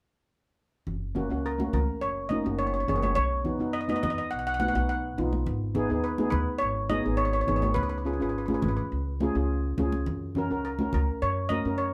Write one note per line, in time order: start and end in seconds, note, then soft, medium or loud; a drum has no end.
0.87 1.28 F#1 medium
0.87 low conga medium
1.15 1.24 A#3 medium
1.15 1.24 C#4 medium
1.15 1.25 F#4 medium
1.15 low conga medium
1.30 1.70 C#2 medium
1.30 1.47 A#3 medium
1.30 1.47 C#4 medium
1.30 1.48 F#4 medium
1.46 1.73 A#4 medium
1.58 2.01 A#3 medium
1.58 2.02 C#4 medium
1.58 2.02 F#4 medium
1.58 high conga medium
1.73 1.87 C#2 medium
1.73 2.00 A#4 medium
1.73 high conga medium
1.73 low conga medium
2.01 2.43 F#1 medium
2.01 2.31 C#5 medium
2.29 2.39 A#3 medium
2.29 2.39 C#4 medium
2.29 2.40 D#4 medium
2.29 2.59 D#5 medium
2.29 high conga medium
2.44 2.86 F#1 medium
2.44 2.70 A#3 medium
2.44 2.71 C#4 medium
2.44 2.71 F#4 medium
2.59 2.66 C#5 medium
2.67 2.73 C#5 medium
2.74 2.79 C#5 medium
2.80 2.88 C#5 medium
2.87 3.15 F#1 loud
2.87 3.16 A#3 medium
2.87 3.17 C#4 medium
2.87 3.17 G#4 medium
2.87 2.94 C#5 medium
2.87 low conga medium
2.96 3.02 C#5 medium
3.03 3.12 C#5 medium
3.03 high conga medium
3.15 3.58 B1 medium
3.15 3.69 C#5 loud
3.15 low conga medium
3.44 3.54 B3 medium
3.44 3.54 D#4 medium
3.44 3.54 F#4 medium
3.44 low conga medium
3.59 4.00 F#2 medium
3.59 3.77 B3 medium
3.59 3.77 D#4 medium
3.59 3.77 F#4 medium
3.73 3.80 D#5 medium
3.81 3.88 D#5 medium
3.88 4.31 B3 medium
3.88 4.31 D#4 medium
3.88 4.32 F#4 medium
3.88 3.95 D#5 medium
3.88 high conga medium
3.96 4.02 D#5 medium
4.03 4.17 F#2 medium
4.03 4.09 D#5 medium
4.03 high conga medium
4.03 low conga medium
4.10 4.17 D#5 medium
4.18 4.26 D#5 medium
4.31 4.73 B1 medium
4.31 4.38 F#5 medium
4.39 4.46 F#5 medium
4.47 4.53 F#5 medium
4.54 4.59 F#5 medium
4.59 4.69 B3 medium
4.59 4.69 D#4 medium
4.59 4.70 F#4 medium
4.59 4.67 F#5 medium
4.59 high conga medium
4.68 4.74 F#5 medium
4.74 5.16 B1 medium
4.74 5.00 B3 medium
4.74 5.01 D#4 medium
4.74 5.01 F#4 medium
4.74 4.83 F#5 medium
4.89 5.30 F#5 medium
5.18 5.45 B1 medium
5.18 5.46 B3 medium
5.18 5.47 D#4 medium
5.18 5.47 F4 medium
5.18 low conga medium
5.33 high conga medium
5.46 5.88 G#1 medium
5.46 low conga medium
5.75 5.84 B3 medium
5.75 5.84 D#4 medium
5.75 5.84 G#4 medium
5.75 low conga medium
5.90 6.30 D#2 medium
5.90 6.07 B3 medium
5.90 6.07 D#4 medium
5.90 6.08 G#4 medium
6.04 6.17 B4 medium
6.18 6.61 B3 medium
6.18 6.62 D#4 medium
6.18 6.62 G#4 medium
6.18 high conga medium
6.30 6.47 D#2 medium
6.30 6.61 B4 medium
6.30 high conga medium
6.30 low conga medium
6.58 7.03 G#1 medium
6.58 6.90 C#5 medium
6.89 6.99 B3 medium
6.89 6.99 D#4 medium
6.89 7.00 G#4 medium
6.89 7.20 D#5 medium
6.89 high conga medium
7.04 7.46 G#1 medium
7.04 7.30 B3 medium
7.04 7.31 D#4 medium
7.04 7.31 G#4 medium
7.17 7.24 C#5 medium
7.25 7.32 C#5 medium
7.33 7.40 C#5 medium
7.41 7.47 C#5 medium
7.47 7.75 G#1 medium
7.47 7.76 B3 medium
7.47 7.77 D#4 medium
7.47 7.77 G#4 medium
7.47 7.55 C#5 medium
7.47 low conga medium
7.56 7.62 C#5 medium
7.62 7.72 C#5 medium
7.62 high conga medium
7.74 8.18 C#2 medium
7.74 7.82 B4 medium
7.74 low conga medium
7.83 7.88 B4 medium
7.90 7.97 B4 medium
7.98 8.05 B4 soft
8.05 8.14 C#4 medium
8.05 8.14 F4 medium
8.05 8.15 G#4 medium
8.05 8.12 B4 soft
8.13 8.21 B4 soft
8.20 8.61 G#1 medium
8.20 8.37 C#4 medium
8.20 8.38 F4 medium
8.20 8.38 G#4 medium
8.20 8.28 B4 medium
8.29 8.37 B4 soft
8.38 8.45 B4 soft
8.46 8.92 C#4 medium
8.46 8.92 F4 medium
8.46 8.52 B4 soft
8.46 high conga medium
8.50 8.92 G#4 medium
8.54 8.60 B4 medium
8.62 8.77 G#1 medium
8.62 8.67 B4 soft
8.62 high conga medium
8.62 low conga medium
8.68 8.75 B4 medium
8.77 8.83 B4 medium
8.92 9.33 C#2 medium
9.20 9.30 C#4 medium
9.20 9.30 F4 medium
9.20 9.31 G#4 medium
9.20 high conga medium
9.35 9.76 C#2 medium
9.35 9.61 C#4 medium
9.35 9.62 F4 medium
9.35 9.62 G#4 medium
9.78 10.05 C#2 medium
9.78 10.07 C#4 medium
9.78 10.07 F4 medium
9.78 10.08 G#4 medium
9.78 high conga medium
9.78 low conga medium
9.92 high conga medium
10.06 10.48 F#2 medium
10.06 low conga medium
10.35 10.45 C#4 medium
10.35 10.45 F#4 medium
10.35 10.46 A#4 medium
10.35 low conga medium
10.50 10.91 C#2 medium
10.50 10.67 C#4 medium
10.50 10.68 F#4 medium
10.50 10.68 A#4 medium
10.65 10.78 A#4 medium
10.79 11.22 C#4 medium
10.79 11.23 F#4 medium
10.79 11.23 A#4 medium
10.79 high conga medium
10.93 11.08 C#2 medium
10.93 11.23 A#4 medium
10.93 high conga medium
10.93 low conga medium
11.22 11.63 F#2 medium
11.22 11.35 C#5 medium
11.49 11.59 C#4 medium
11.49 11.60 F#4 medium
11.49 11.60 A#4 medium
11.49 11.77 D#5 medium
11.49 high conga medium
11.65 11.94 F#2 medium
11.65 11.91 C#4 medium
11.65 11.92 F#4 medium
11.65 11.92 A#4 medium
11.78 11.94 C#5 medium